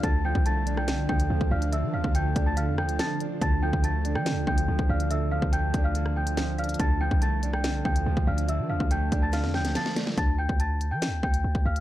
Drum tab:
HH |x-------x---x---x-----x-------x-|x-------x---x---x-----x-x---x---|x-------x---x---x-----x-------x-|x-------x---x---x-----x-x---xxxx|
SD |--------------r-o---------------|--------------------r---o-------|--------------r-o---------------|------------------r-----o-------|
BD |o-----o-------------o-----o-----|------o-----o-------------------|o-----o-------------o-----o-----|------o-----o-------------------|

HH |x-------x---x---x-----x-------x-|x-------x---x---x-----x-x---x---|x-------x---x---x-----x-------x-|
SD |--------------r-o---------------|----------------o-o-o-o-o-o-o-o-|----------------o---------------|
BD |o-----o-------------o-----o-----|------o-----o-------------------|o-----o-------------o-----o-----|